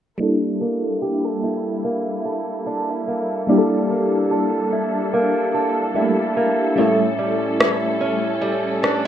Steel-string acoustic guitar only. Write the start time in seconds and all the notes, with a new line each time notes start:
0.20 G3
0.61 A#3
1.02 G4
1.24 A4
1.43 E4
1.84 A#3
2.25 A4
2.66 D4
2.89 E4
3.08 A#3
3.49 G3
3.90 A#3
4.31 A4
4.72 E4
5.13 A#3
5.54 A4
5.95 E4
6.37 A#3
6.78 A2
7.19 G3
7.60 E4
8.01 C#4
8.41 G3
8.83 D4